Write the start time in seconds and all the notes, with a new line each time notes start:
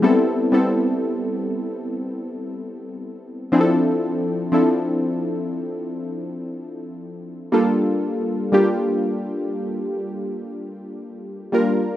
0.02 G3 B3 C4 E4 A4
0.52 G3 B3 C4 E4 A4
3.52 F3 C4 D4 E4 G#4
3.61 A4
4.52 F3 C4 D4 E4 A4
7.52 G3 A#3 D4 F4 A4
8.52 G3 A#3 D4 F4 G4
11.52 G3 A#3 D4 F4 A#4